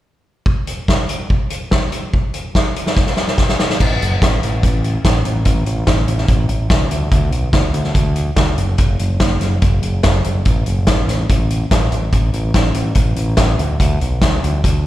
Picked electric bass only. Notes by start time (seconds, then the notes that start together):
3.80 A1
4.01 F#1
4.22 A1
4.44 A1
4.63 A1
5.05 A1
5.25 A1
5.46 A1
5.66 A1
5.87 A1
6.07 A1
6.28 A1
6.48 A1
6.70 C#2
6.91 D2
7.12 D2
7.30 B1
7.54 D2
7.73 D2
7.94 D2
8.36 D2
8.57 F#1
8.78 F#1
9.00 F#1
9.20 F#1
9.40 F#1
9.62 F#1
9.82 F#1
10.04 F#1
10.25 F#1
10.46 A1
10.66 F#1
10.88 A1
11.07 A1
11.29 A1
11.71 A1
11.91 A1
12.13 A1
12.33 A1
12.54 A1
12.73 A1
12.95 A1
13.16 A1
13.37 A1
13.59 D2
13.80 D2
14.01 B1
14.22 D2
14.43 D2
14.64 D2